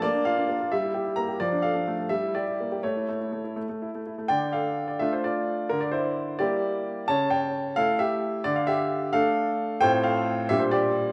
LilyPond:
\new Staff \with { instrumentName = "Grand piano" } { \time 6/8 \key d \minor \tempo 4. = 87 << { d''8 f''4 e''4 bes''8 | d''8 f''4 e''8 d''4 | cis''4. r4. | <d'' g''>8 <a' f''>8. d''16 e''16 c''16 <f' d''>4 |
bes'16 d''16 <e' c''>4 <g' d''>4. | <cis'' a''>8 <cis'' g''>4 <a' f''>8 <g' e''>4 | d''16 f''16 <g' e''>4 <a' f''>4. | \key f \major <c'' g''>8 <a' f''>4 e''16 c''16 <g' d''>4 | } \\ { bes16 d'16 f'16 d'16 bes16 f'16 g16 e'16 g'16 e'16 bes16 g'16 | f16 d'16 a'16 d'16 a16 a'16 g16 e'16 g'16 e'16 bes16 g'16 | a16 e'16 a16 e'16 a16 e'16 a16 a16 e'16 a16 e'16 a16 | d4. <a d' f'>4. |
d4. <g bes e'>4. | cis4. <a e'>4. | d4. <a d'>4. | <a, a c' f'>4. <bes, g d' g'>4. | } >> }